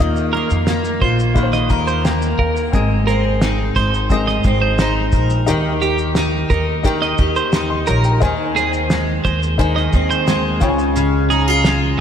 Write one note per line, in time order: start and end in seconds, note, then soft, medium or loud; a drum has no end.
0.00 0.46 D#2 medium
0.00 1.35 D#3 medium
0.00 0.34 A#3 medium
0.00 1.34 A#3 medium
0.00 1.35 D#4 medium
0.00 1.00 F4 medium
0.00 1.36 F4 medium
0.00 1.70 A#4 medium
0.00 2.74 D#5 medium
0.16 shaker medium
0.33 0.67 A#3 medium
0.33 0.49 A#4 medium
0.50 0.98 F2 medium
0.50 shaker soft
0.67 2.04 A#3 medium
0.67 snare loud
0.67 shaker medium
0.85 shaker soft
1.02 1.66 A#1 medium
1.02 2.80 F4 medium
1.02 1.18 C5 medium
1.02 kick medium
1.19 shaker soft
1.34 2.73 D#3 medium
1.34 2.53 A#3 medium
1.34 2.53 D#4 medium
1.34 2.54 F4 medium
1.34 1.43 B4 medium
1.34 kick loud
1.34 shaker medium
1.43 2.57 C5 medium
1.53 1.70 D#5 medium
1.53 snare soft
1.53 shaker soft
1.70 2.35 D#2 loud
1.70 3.11 A#4 medium
1.70 2.02 A#5 medium
1.70 kick medium
1.70 shaker soft
1.87 2.04 C5 medium
1.87 shaker soft
2.04 3.11 A#3 medium
2.04 2.36 G5 medium
2.04 snare loud
2.04 shaker medium
2.22 shaker soft
2.39 2.71 D#2 medium
2.39 2.55 A#4 medium
2.39 2.71 F5 medium
2.39 kick medium
2.56 shaker soft
2.72 3.72 G#1 loud
2.72 4.10 G#3 medium
2.72 3.91 C4 medium
2.72 3.91 G#4 medium
2.72 3.91 A#4 medium
2.72 3.92 D#5 medium
2.72 kick loud
2.72 shaker medium
3.07 4.44 C4 medium
3.07 3.24 A#4 medium
3.07 shaker soft
3.42 3.77 D#4 medium
3.42 snare loud
3.42 shaker medium
3.76 4.41 G#1 medium
3.76 4.79 D#4 medium
3.76 3.92 C5 medium
3.76 kick medium
3.76 shaker soft
3.94 shaker soft
4.10 5.47 G#3 medium
4.10 5.28 C4 medium
4.10 5.28 G#4 medium
4.10 5.29 A#4 medium
4.10 5.29 D#5 medium
4.10 kick medium
4.10 shaker medium
4.27 4.44 D#5 medium
4.27 snare soft
4.44 5.09 G#1 loud
4.44 5.55 C4 medium
4.44 kick medium
4.44 shaker soft
4.62 4.94 C5 medium
4.79 6.16 D#4 medium
4.79 snare loud
4.79 shaker medium
5.12 5.45 A#1 medium
5.12 7.88 A#4 medium
5.12 kick medium
5.12 shaker medium
5.30 shaker soft
5.46 6.47 D#2 loud
5.46 6.84 D#3 medium
5.46 6.65 D#4 medium
5.46 6.65 G4 medium
5.46 6.65 A#4 medium
5.46 6.66 G5 medium
5.46 shaker medium
5.82 5.98 G4 medium
5.82 7.18 G4 medium
5.82 shaker soft
5.98 shaker soft
6.15 6.51 D#4 medium
6.15 snare loud
6.15 shaker medium
6.50 7.15 D#2 medium
6.50 7.53 D#4 medium
6.50 6.67 A#4 medium
6.50 kick medium
6.50 shaker soft
6.83 8.22 D#3 medium
6.83 8.02 D#4 medium
6.83 8.02 G4 medium
6.83 7.19 A#4 medium
6.83 7.19 G5 medium
6.83 kick loud
6.83 shaker medium
7.02 7.18 D#5 medium
7.02 snare soft
7.18 7.83 D#2 loud
7.18 8.29 G4 medium
7.18 kick medium
7.18 shaker soft
7.36 7.53 C5 medium
7.36 shaker medium
7.53 8.90 D#4 medium
7.53 snare loud
7.53 shaker medium
7.70 7.87 D#5 soft
7.70 7.87 C6 medium
7.87 8.20 A#1 medium
7.87 8.04 A#4 medium
7.87 8.60 A#4 medium
7.87 8.04 C#5 medium
7.87 8.04 A#5 medium
7.87 shaker medium
8.04 8.20 A#4 medium
8.04 8.37 G5 medium
8.04 shaker soft
8.20 9.21 D#2 loud
8.20 9.58 D#3 medium
8.20 9.39 D#4 medium
8.20 9.39 A#4 medium
8.20 9.40 C5 medium
8.20 9.40 G#5 loud
8.20 kick loud
8.20 shaker medium
8.56 9.93 C4 medium
8.56 8.72 G#4 medium
8.56 shaker soft
8.73 shaker soft
8.90 9.24 G#3 medium
8.90 snare loud
8.90 shaker medium
9.25 9.89 D#2 loud
9.25 10.27 G#3 medium
9.25 9.41 C5 medium
9.25 kick medium
9.25 shaker soft
9.43 shaker soft
9.58 10.69 D#3 medium
9.58 10.61 D#4 medium
9.58 10.62 A#4 medium
9.58 10.62 C5 medium
9.58 10.62 G#5 medium
9.58 kick loud
9.58 shaker medium
9.76 9.92 D#5 medium
9.76 snare soft
9.93 10.58 D#2 loud
9.93 10.69 C4 medium
9.93 kick medium
9.93 shaker soft
10.10 10.43 C5 medium
10.10 shaker medium
10.27 11.65 G#3 medium
10.27 snare loud
10.27 shaker medium
10.60 11.95 C#2 loud
10.60 10.94 C#3 medium
10.60 11.79 F4 medium
10.60 11.79 G#4 medium
10.60 11.80 C#5 medium
10.60 10.68 G5 medium
10.60 kick medium
10.60 shaker medium
10.69 11.83 G#5 medium
10.79 shaker soft
10.96 12.00 C#3 medium
10.96 shaker medium
11.30 11.48 D#4 medium
11.30 11.47 G#4 medium
11.30 shaker soft
11.48 12.00 F4 medium
11.65 12.00 G#3 medium
11.65 snare loud
11.65 shaker medium